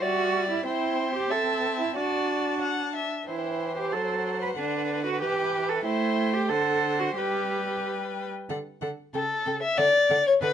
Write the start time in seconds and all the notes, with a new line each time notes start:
0.02 G3 F#4 D5 E5
0.50 E4
0.65 C4 E4 C5 G5
1.15 G4
1.30 C4 A4 E5 A5
1.80 E4
1.97 D4 F#4 D5 A5
2.61 F#5
2.96 E5
3.28 E3 E4 C5 G5
3.78 G4
3.92 F#3 A4 F#5
4.42 B4
4.58 D3 D4 B4
5.06 F#4
5.21 E3 G4 G5
5.69 A4
5.85 A3 E4 C5 G5
6.33 G4
6.49 D3 A4 C5 F#5
7.00 F#4
7.16 G3 G4 B4 G5
8.49 D3 A4 F#5
8.82 D3 A4 F#5
9.14 C#3 A4 G5
9.46 C#3 A4 G5
9.62 E5
9.77 D3 A4 D5 F#5
10.10 D3 A4 F#5
10.27 C#5
10.41 D3 A4 B4 F#5